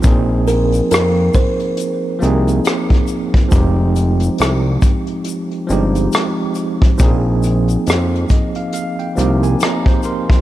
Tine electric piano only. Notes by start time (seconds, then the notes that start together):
0.02 F3 A#3 C4 D#4
0.07 G#4
2.19 F3 A#3 C4 D#4
2.25 G#4
3.49 F3 G3 C4 D#4
3.54 G#3 G4
5.67 F3 G#3 C4
5.71 D#4 G4
6.98 F3 A#3 C4 D#4
7.03 G#4
8.32 D#5
8.56 F5
8.74 F5
8.99 G5
9.15 F3 A#3 C4 D#4
9.21 G4
9.43 G#5
9.63 D#5 A#5
9.88 C5
10.05 A#4 C6
10.31 F4